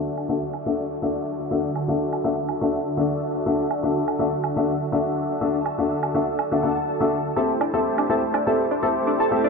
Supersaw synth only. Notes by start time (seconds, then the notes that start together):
Already playing: D3 D4 F#4 E5
7.37 A3 E4 G4 C5